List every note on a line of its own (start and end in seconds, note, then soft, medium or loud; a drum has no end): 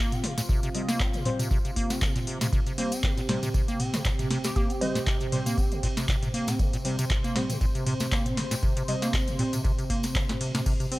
0.00 10.99 C3 medium
0.00 0.14 A#3 loud
0.00 10.99 C4 medium
0.00 2.51 F4 medium
0.12 0.25 C4 loud
0.12 closed hi-hat medium
0.12 mid tom loud
0.12 tambourine soft
0.24 0.35 C3 loud
0.24 snare medium
0.24 open hi-hat loud
0.38 0.42 A#2 loud
0.38 snare medium
0.38 closed hi-hat medium
0.38 tambourine medium
0.49 0.61 C3 medium
0.49 kick loud
0.49 tambourine medium
0.63 0.69 C3 loud
0.63 closed hi-hat soft
0.63 tambourine soft
0.75 0.82 C3 medium
0.75 0.88 G3 medium
0.75 0.88 C4 medium
0.75 0.88 D#5 medium
0.75 open hi-hat loud
0.89 1.01 A#3 loud
0.89 snare medium
0.89 closed hi-hat medium
0.89 tambourine medium
1.00 1.15 C4 loud
1.00 kick loud
1.00 clap loud
1.00 tambourine medium
1.13 1.23 C3 loud
1.13 closed hi-hat soft
1.13 tambourine soft
1.25 1.30 A#2 loud
1.25 1.38 G3 medium
1.25 1.38 C4 medium
1.25 1.38 C5 loud
1.25 mid tom loud
1.25 open hi-hat loud
1.39 1.49 C3 medium
1.39 closed hi-hat medium
1.39 mid tom loud
1.39 tambourine medium
1.51 1.59 C3 loud
1.51 kick loud
1.51 tambourine medium
1.65 1.71 C3 medium
1.65 closed hi-hat soft
1.65 tambourine soft
1.76 1.92 A#3 loud
1.76 kick medium
1.76 open hi-hat loud
1.90 2.03 C4 loud
1.90 snare medium
1.90 closed hi-hat medium
1.90 tambourine medium
2.01 2.13 C3 loud
2.01 kick loud
2.01 clap loud
2.01 tambourine medium
2.15 2.20 A#2 loud
2.15 closed hi-hat medium
2.15 mid tom loud
2.15 tambourine soft
2.27 2.39 C3 medium
2.27 open hi-hat loud
2.41 2.47 C3 loud
2.41 snare medium
2.41 closed hi-hat medium
2.41 mid tom loud
2.41 tambourine medium
2.53 2.60 C3 loud
2.53 6.58 G4 medium
2.53 kick loud
2.53 ride medium
2.53 tambourine medium
2.66 2.73 C3 medium
2.66 closed hi-hat medium
2.66 tambourine soft
2.78 2.91 G3 medium
2.78 2.94 A#3 medium
2.78 2.91 C4 medium
2.78 2.91 C5 medium
2.78 open hi-hat loud
2.78 ride medium
2.92 3.05 C4 loud
2.92 closed hi-hat medium
2.92 tambourine medium
3.03 3.15 C3 loud
3.03 kick loud
3.03 clap loud
3.03 ride medium
3.03 tambourine medium
3.17 3.21 A#2 loud
3.17 closed hi-hat soft
3.17 tambourine soft
3.29 3.40 C3 medium
3.29 3.37 G3 medium
3.29 3.37 C4 medium
3.29 3.37 C5 loud
3.29 snare medium
3.29 mid tom medium
3.29 open hi-hat loud
3.29 ride medium
3.43 3.49 C3 loud
3.43 closed hi-hat medium
3.43 mid tom medium
3.43 tambourine medium
3.54 3.62 C3 medium
3.54 kick loud
3.54 ride medium
3.54 tambourine medium
3.68 3.81 A#3 loud
3.68 closed hi-hat soft
3.68 tambourine soft
3.80 3.95 C4 loud
3.80 mid tom medium
3.80 open hi-hat loud
3.80 ride medium
3.94 4.03 C3 medium
3.94 snare medium
3.94 closed hi-hat medium
3.94 tambourine medium
4.05 4.10 A#2 loud
4.05 kick loud
4.05 clap loud
4.05 ride medium
4.05 tambourine medium
4.19 4.29 C3 medium
4.19 closed hi-hat medium
4.19 mid tom loud
4.19 tambourine soft
4.31 4.38 C3 loud
4.31 snare medium
4.31 open hi-hat loud
4.31 ride medium
4.44 4.51 C3 medium
4.44 4.52 G4 medium
4.44 snare medium
4.44 closed hi-hat medium
4.44 tambourine medium
4.56 4.72 A#3 loud
4.56 4.65 G4 medium
4.56 kick loud
4.56 ride medium
4.56 tambourine medium
4.70 4.83 C4 loud
4.70 closed hi-hat medium
4.70 tambourine soft
4.81 4.93 C3 loud
4.81 4.94 G3 medium
4.81 4.94 C4 medium
4.81 5.53 C5 medium
4.81 4.94 D#5 loud
4.81 open hi-hat loud
4.81 ride medium
4.95 4.99 A#2 loud
4.95 snare medium
4.95 closed hi-hat medium
4.95 tambourine medium
5.07 5.18 C3 medium
5.07 kick loud
5.07 clap loud
5.07 ride medium
5.07 tambourine medium
5.20 5.27 C3 loud
5.20 closed hi-hat soft
5.20 tambourine soft
5.32 5.40 C3 medium
5.32 5.45 G3 medium
5.32 5.45 C4 medium
5.32 5.45 C5 loud
5.32 mid tom medium
5.32 open hi-hat loud
5.32 ride medium
5.46 5.59 A#3 loud
5.46 closed hi-hat medium
5.46 mid tom medium
5.46 tambourine medium
5.58 5.73 C4 loud
5.58 kick loud
5.58 ride medium
5.58 tambourine medium
5.71 5.81 C3 loud
5.71 closed hi-hat soft
5.71 tambourine soft
5.83 5.88 A#2 medium
5.83 kick medium
5.83 open hi-hat loud
5.83 ride medium
5.97 6.07 C3 medium
5.97 snare medium
5.97 closed hi-hat medium
5.97 tambourine medium
6.08 6.16 C3 loud
6.08 kick loud
6.08 clap loud
6.08 ride medium
6.08 tambourine medium
6.23 6.29 C3 medium
6.23 closed hi-hat medium
6.23 mid tom loud
6.23 tambourine soft
6.34 6.49 A#3 loud
6.34 open hi-hat loud
6.34 ride medium
6.48 6.61 C4 loud
6.48 snare medium
6.48 closed hi-hat medium
6.48 mid tom loud
6.48 tambourine medium
6.59 6.71 C3 loud
6.59 10.65 C5 medium
6.59 kick loud
6.59 ride medium
6.59 tambourine medium
6.73 6.77 A#2 loud
6.73 closed hi-hat medium
6.73 tambourine soft
6.85 6.96 C3 medium
6.85 6.98 G3 medium
6.85 6.98 C4 medium
6.85 6.98 C5 medium
6.85 open hi-hat loud
6.85 ride medium
6.99 7.05 C3 loud
6.99 closed hi-hat medium
6.99 tambourine medium
7.10 7.18 C3 medium
7.10 kick loud
7.10 clap loud
7.10 ride medium
7.24 7.37 A#3 loud
7.24 closed hi-hat soft
7.24 tambourine soft
7.36 7.44 G3 medium
7.36 7.44 C4 medium
7.36 7.51 C4 loud
7.36 7.44 C5 loud
7.36 snare medium
7.36 mid tom medium
7.36 open hi-hat loud
7.36 ride medium
7.50 7.59 C3 loud
7.50 closed hi-hat medium
7.50 mid tom medium
7.50 tambourine medium
7.61 7.66 A#2 loud
7.61 kick loud
7.61 ride medium
7.61 tambourine medium
7.75 7.85 C3 medium
7.75 closed hi-hat soft
7.75 tambourine soft
7.86 7.94 C3 loud
7.86 mid tom medium
7.86 open hi-hat loud
7.86 ride medium
8.00 8.07 C3 medium
8.00 snare medium
8.00 closed hi-hat medium
8.00 tambourine medium
8.12 8.27 A#3 loud
8.12 kick loud
8.12 clap loud
8.12 ride medium
8.12 tambourine medium
8.26 8.39 C4 loud
8.26 closed hi-hat medium
8.26 mid tom medium
8.26 tambourine soft
8.37 8.49 C3 loud
8.37 snare medium
8.37 open hi-hat loud
8.37 ride medium
8.51 8.55 A#2 loud
8.51 snare medium
8.51 closed hi-hat medium
8.51 tambourine medium
8.63 8.74 C3 medium
8.63 kick loud
8.63 ride medium
8.63 tambourine medium
8.77 8.83 C3 loud
8.77 closed hi-hat medium
8.77 tambourine soft
8.88 8.96 C3 medium
8.88 9.01 G3 medium
8.88 9.01 C4 medium
8.88 9.01 D#5 loud
8.88 open hi-hat loud
8.88 ride medium
9.02 9.15 A#3 loud
9.02 snare medium
9.02 closed hi-hat medium
9.02 tambourine medium
9.14 9.29 C4 loud
9.14 kick loud
9.14 clap loud
9.14 ride medium
9.14 tambourine medium
9.28 9.37 C3 loud
9.28 closed hi-hat soft
9.28 tambourine soft
9.39 9.44 A#2 loud
9.39 9.52 G3 medium
9.39 9.52 C4 medium
9.39 9.52 C5 loud
9.39 mid tom medium
9.39 open hi-hat loud
9.39 ride medium
9.53 9.62 C3 medium
9.53 closed hi-hat medium
9.53 mid tom medium
9.53 tambourine medium
9.64 9.72 C3 loud
9.64 kick loud
9.64 ride medium
9.64 tambourine medium
9.78 9.85 C3 medium
9.78 closed hi-hat soft
9.78 tambourine soft
9.90 10.05 A#3 loud
9.90 kick medium
9.90 open hi-hat loud
9.90 ride medium
10.03 10.17 C4 loud
10.03 snare medium
10.03 closed hi-hat medium
10.03 tambourine medium
10.15 10.27 C3 loud
10.15 kick loud
10.15 clap loud
10.15 ride medium
10.15 tambourine medium
10.29 10.33 A#2 loud
10.29 snare medium
10.29 closed hi-hat medium
10.29 mid tom medium
10.29 tambourine soft
10.41 10.52 C3 medium
10.41 open hi-hat loud
10.41 ride medium
10.55 10.61 C3 loud
10.55 snare loud
10.55 closed hi-hat medium
10.55 mid tom medium
10.55 tambourine medium
10.66 10.74 C3 loud
10.66 10.99 G4 medium
10.66 kick loud
10.66 crash medium
10.66 ride medium
10.66 tambourine medium
10.80 10.86 C3 medium
10.80 closed hi-hat medium
10.80 tambourine soft
10.92 10.99 G3 medium
10.92 10.99 C4 medium
10.92 10.99 C5 medium
10.92 open hi-hat loud
10.92 ride medium